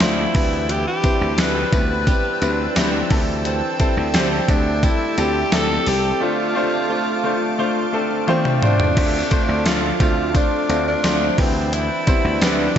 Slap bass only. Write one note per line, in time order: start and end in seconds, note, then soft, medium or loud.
0.00 0.25 D2 loud
0.35 0.84 D2 medium
1.21 1.34 D2 medium
1.39 1.63 D2 loud
1.73 2.10 D2 medium
2.42 2.67 D2 loud
2.76 3.01 D2 loud
3.11 3.60 D2 medium
3.97 4.09 D2 loud
4.14 4.39 D2 loud
4.48 4.86 D2 loud
5.18 5.43 D2 loud
5.52 5.77 D2 loud
5.87 6.11 C2 medium
8.97 9.22 D2 loud
9.49 9.61 D2 medium
9.66 9.91 D2 loud
10.00 10.37 D2 loud
10.69 10.94 D2 loud
11.04 11.29 D2 loud
11.38 11.88 D2 medium
12.25 12.37 D2 medium
12.42 12.67 D2 loud